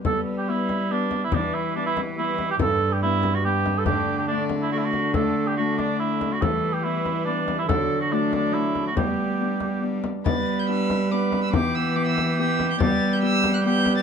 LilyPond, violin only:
\new Staff \with { instrumentName = "Violin" } { \time 3/4 \key g \major \tempo 4 = 141 b'2 b'4 | b'2 b'4 | b'2 b'4 | d''4 d''4 d''8 r8 |
d''4 d''2 | b'4 b'2 | d''4 d''2 | d''2~ d''8 r8 |
a'''8. g'''16 e'''4 d'''8. e'''16 | d'''8 e'''8 d'''16 e'''8. e'''8. g'''16 | a'''8. g'''16 e'''8. fis'''16 g'''8. a'''16 | }